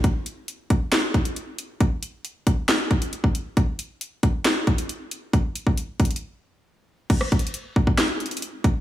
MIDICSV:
0, 0, Header, 1, 2, 480
1, 0, Start_track
1, 0, Tempo, 441176
1, 44, Time_signature, 4, 2, 24, 8
1, 9581, End_track
2, 0, Start_track
2, 0, Title_t, "Drums"
2, 44, Note_on_c, 9, 36, 118
2, 44, Note_on_c, 9, 42, 83
2, 152, Note_off_c, 9, 42, 0
2, 153, Note_off_c, 9, 36, 0
2, 284, Note_on_c, 9, 42, 89
2, 393, Note_off_c, 9, 42, 0
2, 524, Note_on_c, 9, 42, 78
2, 633, Note_off_c, 9, 42, 0
2, 764, Note_on_c, 9, 42, 95
2, 765, Note_on_c, 9, 36, 94
2, 873, Note_off_c, 9, 42, 0
2, 874, Note_off_c, 9, 36, 0
2, 1004, Note_on_c, 9, 38, 126
2, 1004, Note_on_c, 9, 42, 70
2, 1010, Note_on_c, 9, 39, 96
2, 1113, Note_off_c, 9, 38, 0
2, 1113, Note_off_c, 9, 42, 0
2, 1118, Note_off_c, 9, 39, 0
2, 1244, Note_on_c, 9, 36, 88
2, 1244, Note_on_c, 9, 42, 51
2, 1352, Note_off_c, 9, 36, 0
2, 1353, Note_off_c, 9, 42, 0
2, 1364, Note_on_c, 9, 42, 85
2, 1473, Note_off_c, 9, 42, 0
2, 1484, Note_on_c, 9, 42, 89
2, 1593, Note_off_c, 9, 42, 0
2, 1724, Note_on_c, 9, 42, 86
2, 1833, Note_off_c, 9, 42, 0
2, 1964, Note_on_c, 9, 36, 111
2, 1964, Note_on_c, 9, 42, 80
2, 2073, Note_off_c, 9, 36, 0
2, 2073, Note_off_c, 9, 42, 0
2, 2204, Note_on_c, 9, 42, 90
2, 2313, Note_off_c, 9, 42, 0
2, 2443, Note_on_c, 9, 42, 81
2, 2552, Note_off_c, 9, 42, 0
2, 2684, Note_on_c, 9, 36, 98
2, 2684, Note_on_c, 9, 42, 95
2, 2793, Note_off_c, 9, 36, 0
2, 2793, Note_off_c, 9, 42, 0
2, 2923, Note_on_c, 9, 38, 120
2, 2923, Note_on_c, 9, 42, 71
2, 2929, Note_on_c, 9, 39, 96
2, 3032, Note_off_c, 9, 38, 0
2, 3032, Note_off_c, 9, 42, 0
2, 3037, Note_off_c, 9, 39, 0
2, 3163, Note_on_c, 9, 36, 89
2, 3163, Note_on_c, 9, 42, 51
2, 3272, Note_off_c, 9, 36, 0
2, 3272, Note_off_c, 9, 42, 0
2, 3283, Note_on_c, 9, 42, 85
2, 3392, Note_off_c, 9, 42, 0
2, 3403, Note_on_c, 9, 42, 89
2, 3512, Note_off_c, 9, 42, 0
2, 3523, Note_on_c, 9, 36, 90
2, 3632, Note_off_c, 9, 36, 0
2, 3644, Note_on_c, 9, 42, 86
2, 3753, Note_off_c, 9, 42, 0
2, 3883, Note_on_c, 9, 42, 82
2, 3884, Note_on_c, 9, 36, 114
2, 3992, Note_off_c, 9, 36, 0
2, 3992, Note_off_c, 9, 42, 0
2, 4123, Note_on_c, 9, 42, 90
2, 4232, Note_off_c, 9, 42, 0
2, 4364, Note_on_c, 9, 42, 81
2, 4473, Note_off_c, 9, 42, 0
2, 4603, Note_on_c, 9, 42, 93
2, 4604, Note_on_c, 9, 36, 97
2, 4712, Note_off_c, 9, 42, 0
2, 4713, Note_off_c, 9, 36, 0
2, 4843, Note_on_c, 9, 38, 120
2, 4843, Note_on_c, 9, 42, 69
2, 4849, Note_on_c, 9, 39, 101
2, 4952, Note_off_c, 9, 38, 0
2, 4952, Note_off_c, 9, 42, 0
2, 4957, Note_off_c, 9, 39, 0
2, 5083, Note_on_c, 9, 36, 91
2, 5084, Note_on_c, 9, 42, 51
2, 5192, Note_off_c, 9, 36, 0
2, 5193, Note_off_c, 9, 42, 0
2, 5204, Note_on_c, 9, 42, 85
2, 5313, Note_off_c, 9, 42, 0
2, 5324, Note_on_c, 9, 42, 88
2, 5433, Note_off_c, 9, 42, 0
2, 5564, Note_on_c, 9, 42, 87
2, 5673, Note_off_c, 9, 42, 0
2, 5804, Note_on_c, 9, 36, 114
2, 5804, Note_on_c, 9, 42, 82
2, 5912, Note_off_c, 9, 42, 0
2, 5913, Note_off_c, 9, 36, 0
2, 6044, Note_on_c, 9, 42, 87
2, 6152, Note_off_c, 9, 42, 0
2, 6165, Note_on_c, 9, 36, 80
2, 6274, Note_off_c, 9, 36, 0
2, 6283, Note_on_c, 9, 42, 79
2, 6392, Note_off_c, 9, 42, 0
2, 6524, Note_on_c, 9, 36, 93
2, 6524, Note_on_c, 9, 42, 83
2, 6584, Note_off_c, 9, 42, 0
2, 6584, Note_on_c, 9, 42, 78
2, 6633, Note_off_c, 9, 36, 0
2, 6643, Note_off_c, 9, 42, 0
2, 6643, Note_on_c, 9, 42, 76
2, 6703, Note_off_c, 9, 42, 0
2, 6703, Note_on_c, 9, 42, 77
2, 6812, Note_off_c, 9, 42, 0
2, 7724, Note_on_c, 9, 36, 116
2, 7724, Note_on_c, 9, 42, 85
2, 7724, Note_on_c, 9, 49, 103
2, 7833, Note_off_c, 9, 36, 0
2, 7833, Note_off_c, 9, 42, 0
2, 7833, Note_off_c, 9, 49, 0
2, 7842, Note_on_c, 9, 37, 99
2, 7951, Note_off_c, 9, 37, 0
2, 7964, Note_on_c, 9, 36, 96
2, 7964, Note_on_c, 9, 42, 72
2, 8044, Note_off_c, 9, 42, 0
2, 8044, Note_on_c, 9, 42, 71
2, 8073, Note_off_c, 9, 36, 0
2, 8124, Note_off_c, 9, 42, 0
2, 8124, Note_on_c, 9, 42, 71
2, 8204, Note_off_c, 9, 42, 0
2, 8204, Note_on_c, 9, 42, 84
2, 8312, Note_off_c, 9, 42, 0
2, 8444, Note_on_c, 9, 36, 95
2, 8553, Note_off_c, 9, 36, 0
2, 8564, Note_on_c, 9, 36, 96
2, 8673, Note_off_c, 9, 36, 0
2, 8684, Note_on_c, 9, 37, 76
2, 8684, Note_on_c, 9, 38, 124
2, 8684, Note_on_c, 9, 42, 71
2, 8690, Note_on_c, 9, 39, 98
2, 8793, Note_off_c, 9, 37, 0
2, 8793, Note_off_c, 9, 38, 0
2, 8793, Note_off_c, 9, 42, 0
2, 8798, Note_off_c, 9, 39, 0
2, 8925, Note_on_c, 9, 42, 52
2, 8984, Note_off_c, 9, 42, 0
2, 8984, Note_on_c, 9, 42, 63
2, 9044, Note_off_c, 9, 42, 0
2, 9044, Note_on_c, 9, 42, 75
2, 9104, Note_off_c, 9, 42, 0
2, 9104, Note_on_c, 9, 42, 88
2, 9164, Note_off_c, 9, 42, 0
2, 9164, Note_on_c, 9, 42, 93
2, 9273, Note_off_c, 9, 42, 0
2, 9404, Note_on_c, 9, 36, 116
2, 9404, Note_on_c, 9, 42, 79
2, 9513, Note_off_c, 9, 36, 0
2, 9513, Note_off_c, 9, 42, 0
2, 9581, End_track
0, 0, End_of_file